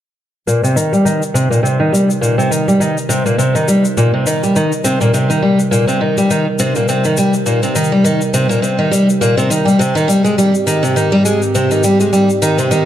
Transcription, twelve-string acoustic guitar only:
0.47 0.62 A#2 medium
0.63 0.75 C3 medium
0.76 0.91 D#3 medium
0.93 1.04 G3 medium
1.05 1.21 D#3 medium
1.34 1.49 C3 medium
1.50 1.62 A#2 medium
1.63 1.78 C3 medium
1.80 1.92 D#3 medium
1.92 2.08 G3 medium
2.21 2.37 A#2 medium
2.38 2.50 C3 medium
2.51 2.66 D#3 medium
2.68 2.79 G3 medium
2.80 2.96 D#3 medium
3.09 3.24 C3 medium
3.26 3.37 A#2 medium
3.38 3.53 C3 medium
3.55 3.67 D#3 medium
3.68 3.83 G3 medium
3.97 4.12 A#2 medium
4.13 4.25 C3 medium
4.26 4.41 D#3 medium
4.43 4.54 G3 medium
4.56 4.71 D#3 medium
4.84 4.99 C3 medium
5.01 5.12 A#2 medium
5.14 5.28 C3 medium
5.30 5.41 D#3 medium
5.42 5.58 G3 medium
5.71 5.86 A#2 medium
5.88 5.99 C3 medium
6.01 6.16 D#3 medium
6.17 6.29 G3 medium
6.30 6.46 D#3 medium
6.60 6.74 C3 medium
6.76 6.87 A#2 medium
6.89 7.03 C3 medium
7.05 7.16 D#3 medium
7.18 7.33 G3 medium
7.46 7.61 A#2 medium
7.63 7.74 C3 medium
7.75 7.90 D#3 medium
7.92 8.04 G3 medium
8.04 8.20 D#3 medium
8.34 8.49 C3 medium
8.49 8.61 A#2 medium
8.62 8.77 C3 medium
8.79 8.91 D#3 medium
8.91 9.07 G3 medium
9.21 9.36 A#2 medium
9.37 9.49 C3 medium
9.50 9.65 D#3 medium
9.65 9.78 G3 medium
9.79 9.94 C3 medium
9.95 10.07 D#3 medium
10.08 10.23 G3 medium
10.24 10.36 G#3 medium
10.38 10.54 G3 medium
10.67 10.82 D#3 medium
10.83 10.95 C3 medium
10.96 11.11 D#3 medium
11.12 11.24 G3 medium
11.25 11.41 G#3 medium
11.55 11.69 C3 medium
11.71 11.82 D#3 medium
11.84 11.98 G3 medium
12.00 12.12 G#3 medium
12.13 12.28 G3 medium
12.42 12.57 D#3 medium
12.58 12.70 C3 medium
12.71 12.85 D#3 medium

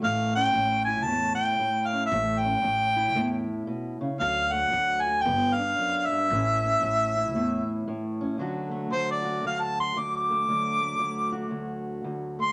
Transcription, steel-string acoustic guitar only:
0.00 0.54 A2 medium
0.00 0.02 A3 soft
0.00 2.13 A3 soft
0.36 1.92 C#4 medium
0.54 1.07 A2 medium
0.87 2.09 E4 medium
1.07 1.58 A2 medium
1.59 2.11 A2 medium
1.93 2.10 C#4 medium
2.13 2.61 A2 medium
2.13 4.19 A3 medium
2.45 4.19 C#4 medium
2.62 3.14 A2 medium
2.96 4.18 E4 medium
3.16 3.67 A2 medium
3.67 4.00 B2 medium
4.01 4.21 C#3 medium
4.19 4.69 D2 medium
4.19 5.25 F#3 soft
4.52 5.25 A3 medium
4.71 5.24 D2 medium
5.06 5.23 F#4 medium
5.25 5.77 G2 medium
5.25 6.28 B3 medium
5.59 6.28 D4 medium
5.78 6.11 F#2 medium
6.11 6.30 G2 medium
6.31 6.80 A2 medium
6.31 8.38 E3 medium
6.31 8.38 A3 soft
6.31 6.63 C#4 medium
6.31 7.16 E4 medium
6.64 8.20 C#4 medium
6.81 7.34 A2 medium
7.17 8.38 E4 medium
7.35 7.86 A2 medium
7.88 8.39 A2 medium
8.21 8.37 C#4 medium
8.38 8.91 D2 medium
8.38 12.52 D3 medium
8.38 10.48 F#3 medium
8.38 8.71 A3 soft
8.38 9.24 F#4 medium
8.71 10.30 A3 medium
8.91 9.43 D2 medium
9.24 11.32 F#4 medium
9.44 9.95 D2 medium
9.96 10.48 D2 medium
10.30 10.80 A3 soft
10.48 10.98 D2 medium
10.48 12.52 F#3 medium
10.81 12.38 A3 medium
10.99 11.50 D2 medium
11.32 12.52 F#4 medium
11.51 12.04 D2 medium
12.04 12.52 D2 medium
12.39 12.52 A3 medium

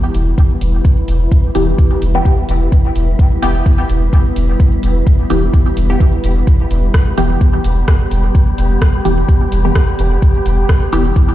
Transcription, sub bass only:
0.14 0.33 E1 medium
0.61 0.80 E1 loud
1.08 1.27 E1 loud
1.55 1.74 E1 medium
2.02 2.20 E1 medium
2.49 2.67 E1 loud
2.96 3.14 E1 loud
3.43 3.61 E1 medium
3.89 4.08 E1 medium
4.36 4.55 E1 loud
4.83 5.02 E1 loud
5.30 5.49 E1 medium
5.77 5.96 E1 medium
6.24 6.42 E1 loud
6.71 6.89 E1 loud
7.18 7.36 E1 medium
7.64 7.83 E1 medium
8.11 8.30 E1 loud
8.58 8.77 E1 loud
9.05 9.24 E1 medium
9.52 9.71 E1 medium
9.99 10.17 E1 loud
10.46 10.64 E1 loud
10.93 11.11 E1 medium

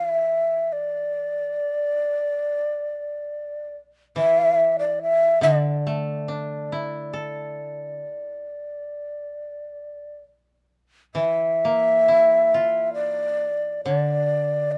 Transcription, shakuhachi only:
0.00 0.08 F5 medium
0.08 0.74 E5 medium
0.72 3.75 D5 medium
4.17 4.77 E5 loud
4.79 5.00 D5 medium
5.02 5.41 E5 medium
5.43 10.17 D5 medium
11.15 12.94 E5 medium
12.94 13.82 D5 medium
13.85 14.73 D5 medium
14.72 14.78 E5 medium

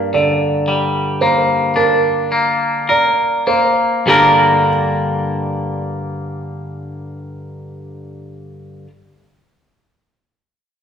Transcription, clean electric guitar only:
0.00 2.32 G2 soft
0.00 1.21 A#3 soft
0.00 1.10 D4 soft
0.14 2.89 D3 soft
0.68 3.48 G3 soft
1.22 2.31 A#3 soft
1.76 4.08 D4 soft
2.32 3.46 A#3 soft
2.89 4.08 A#4 soft
3.47 4.07 A#3 soft
4.06 8.86 G2 soft
4.06 8.87 D3 soft
4.06 8.87 G3 soft
4.06 8.88 A#3 soft
4.06 8.89 D4 medium
4.06 8.90 A#4 medium

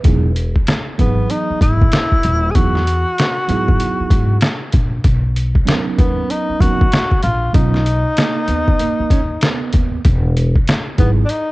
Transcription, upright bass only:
0.05 0.53 E1 medium
0.99 1.23 G#1 medium
1.50 muted upright bass stroke soft
1.61 1.85 G#1 medium
2.25 2.48 D#1 loud
2.56 3.03 E2 medium
3.49 3.73 G#2 medium
4.00 muted upright bass stroke soft
4.11 4.35 G#2 medium
4.74 4.97 A#1 medium
5.05 5.52 B1 medium
5.99 6.23 D#2 medium
6.49 muted upright bass stroke soft
6.60 6.84 D#2 medium
7.24 7.47 A#1 medium
7.55 8.02 B1 loud
8.48 8.72 D#2 medium
9.00 muted upright bass stroke soft
9.11 9.35 D#2 medium
9.74 9.98 D#2 medium
10.05 10.53 E1 medium
10.99 11.22 G#1 medium

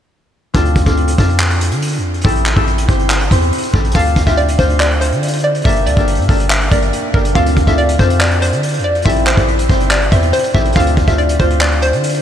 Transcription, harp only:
0.54 0.78 C4 medium
0.54 0.79 D4 medium
0.54 0.79 F4 medium
0.54 0.79 A4 loud
0.85 1.10 C4 medium
0.85 1.11 D4 medium
0.85 1.11 F4 medium
0.85 1.11 A4 medium
1.18 2.24 C4 medium
1.18 3.94 D4 medium
1.18 2.31 F4 medium
1.18 2.25 A4 medium
2.24 2.49 C4 loud
2.24 2.49 E4 medium
2.24 2.49 G4 medium
2.24 2.50 A4 loud
2.56 2.80 C4 medium
2.56 2.81 E4 medium
2.56 2.81 G4 medium
2.56 2.81 A4 medium
2.88 3.20 C4 medium
2.88 3.21 E4 medium
2.88 3.21 G4 medium
2.88 3.21 C5 medium
3.30 3.63 C4 medium
3.30 3.63 E4 medium
3.30 3.64 G4 medium
3.30 3.64 C5 medium
3.73 3.89 C4 medium
3.73 3.90 E4 medium
3.73 3.90 G4 medium
3.73 3.90 A4 medium
3.94 4.19 C4 medium
3.94 4.19 D4 medium
3.94 4.19 F4 medium
3.94 4.20 A4 loud
4.26 4.51 C4 medium
4.26 4.51 D4 medium
4.26 4.51 F4 medium
4.26 4.52 G4 medium
4.58 7.34 C4 medium
4.58 5.64 D4 medium
4.58 7.12 F4 medium
4.58 6.58 C5 medium
5.64 5.89 A#3 loud
5.64 5.89 D4 medium
5.64 5.90 G4 medium
5.64 5.90 A4 loud
5.96 6.21 A#3 medium
5.96 6.21 D4 medium
5.96 6.22 G4 medium
5.96 6.22 A4 medium
6.28 6.61 A#3 medium
6.28 6.61 D4 medium
6.28 6.61 G4 medium
6.28 6.62 A4 medium
6.71 7.04 A#3 medium
6.71 7.04 D4 medium
6.71 7.04 G4 medium
6.71 7.04 A#4 medium
7.13 7.30 A#3 medium
7.13 7.30 D4 medium
7.13 7.30 G4 medium
7.13 7.31 A4 medium
7.34 7.59 C4 loud
7.34 7.59 D4 medium
7.34 7.60 F4 medium
7.34 7.60 A4 loud
7.66 7.91 C4 medium
7.66 7.91 D4 medium
7.66 7.92 F4 medium
7.66 7.92 A4 medium
7.98 9.04 C4 medium
7.98 10.75 D4 medium
7.98 9.11 F4 medium
7.98 9.06 A4 medium
9.05 9.29 C4 loud
9.05 9.30 E4 medium
9.05 9.30 G4 medium
9.05 9.30 A4 loud
9.36 9.61 C4 medium
9.36 9.62 E4 medium
9.36 9.62 G4 medium
9.36 9.62 A4 medium
9.68 10.01 C4 medium
9.68 10.02 E4 medium
9.68 10.02 G4 medium
9.68 10.02 C5 medium
10.11 10.44 C4 medium
10.11 10.44 E4 medium
10.11 10.44 G4 medium
10.11 10.45 C5 medium
10.54 10.70 C4 medium
10.54 10.71 E4 medium
10.54 10.71 G4 medium
10.54 10.71 A4 medium
10.75 11.00 C4 medium
10.75 11.00 D4 medium
10.75 11.00 F4 medium
10.75 11.01 A4 loud
11.07 11.32 C4 medium
11.07 11.32 D4 medium
11.07 11.32 F4 medium
11.07 11.32 G4 medium
11.39 12.22 C4 medium
11.39 12.22 D4 medium
11.39 12.22 F4 medium
11.39 12.22 C5 medium

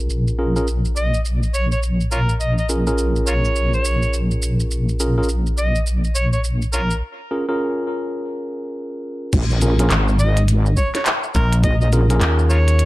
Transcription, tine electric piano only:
0.00 0.36 C#4 medium
0.00 0.36 F4 medium
0.00 0.36 G#4 medium
0.00 0.36 A#4 medium
0.39 0.54 C#4 medium
0.39 0.54 F4 medium
0.39 0.54 G#4 medium
0.39 0.54 A#4 medium
0.56 0.66 C#4 medium
0.56 0.66 F4 medium
0.56 0.66 G#4 medium
0.56 0.66 A#4 medium
2.69 2.83 C#4 medium
2.69 2.83 F4 medium
2.69 2.83 G#4 medium
2.69 2.83 A#4 medium
2.87 4.98 C#4 medium
2.87 4.98 F4 medium
2.87 4.98 G#4 medium
2.87 4.98 A#4 medium
5.00 5.15 C#4 medium
5.00 5.15 F4 medium
5.00 5.15 G#4 medium
5.00 5.15 A#4 medium
5.18 5.28 C#4 medium
5.18 5.28 F4 medium
5.18 5.28 G#4 medium
5.18 5.28 A#4 medium
7.31 7.44 C#4 medium
7.31 7.44 F4 medium
7.31 7.44 G#4 medium
7.31 7.44 A#4 medium
7.48 9.32 C#4 medium
7.48 9.32 F4 medium
7.48 9.32 G#4 medium
7.48 9.32 A#4 medium
9.62 9.77 C#4 medium
9.62 9.77 F4 medium
9.62 9.77 G#4 medium
9.62 9.77 A#4 medium
9.79 9.89 C#4 medium
9.79 9.89 F4 medium
9.79 9.89 G#4 medium
9.79 9.89 A#4 medium
11.93 12.06 C#4 medium
11.93 12.06 F4 medium
11.93 12.06 G#4 medium
11.93 12.06 A#4 medium
12.10 12.85 C#4 medium
12.10 12.85 F4 medium
12.10 12.85 G#4 medium
12.10 12.85 A#4 loud

